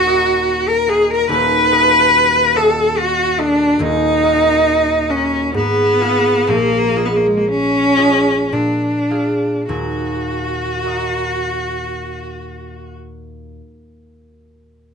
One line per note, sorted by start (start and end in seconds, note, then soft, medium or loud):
0.00 1.28 D#1 medium
0.00 1.28 D#2 medium
0.00 0.70 F#4 loud
0.06 0.87 F#4 medium
0.06 0.87 A#4 medium
0.06 0.88 D#5 medium
0.68 0.91 A#4 loud
0.87 1.70 F#4 medium
0.87 1.12 G#4 loud
0.87 1.33 A#4 medium
0.87 1.71 D#5 medium
1.10 1.29 A#4 loud
1.29 3.78 D#1 medium
1.29 3.79 D#2 medium
1.29 2.58 B4 loud
1.71 2.54 F#4 medium
1.71 2.55 A4 medium
1.71 2.55 D#5 medium
2.55 3.37 F#4 medium
2.55 3.38 A4 medium
2.55 2.99 A4 loud
2.55 3.38 D#5 medium
2.97 3.41 F#4 loud
3.39 3.83 D4 loud
3.39 4.22 F#4 medium
3.39 3.85 A4 medium
3.39 4.23 D#5 medium
3.79 5.57 D#1 medium
3.79 5.58 D#2 medium
3.79 5.11 D#4 loud
4.24 5.08 F#4 medium
4.24 5.09 A#4 medium
4.24 5.09 D#5 medium
5.09 5.54 C#4 loud
5.09 5.58 F#4 medium
5.09 5.58 A#4 medium
5.09 5.58 D#5 medium
5.54 6.52 G#2 medium
5.54 6.51 B3 loud
6.01 6.95 F4 medium
6.01 6.95 G#4 medium
6.01 9.10 F5 medium
6.47 8.56 A#1 medium
6.47 8.51 A#2 medium
6.47 7.07 A#3 loud
6.96 7.96 F4 medium
6.96 7.96 G#4 medium
6.96 7.96 D#5 medium
7.05 7.17 B3 medium
7.16 7.28 A#3 medium
7.26 7.39 G#3 medium
7.37 7.49 A#3 medium
7.48 8.54 C#4 loud
7.97 9.09 F4 medium
7.97 9.10 G#4 medium
7.97 8.56 D#5 medium
8.52 9.68 A#2 medium
8.52 9.67 D4 medium
9.10 9.73 F4 medium
9.10 9.73 G#4 medium
9.10 9.73 F5 medium
9.68 13.59 D#2 medium
9.68 13.59 A#2 medium
9.68 12.96 F#4 medium
10.83 14.12 F#4 medium
10.83 14.14 A#4 medium
10.83 14.15 D#5 medium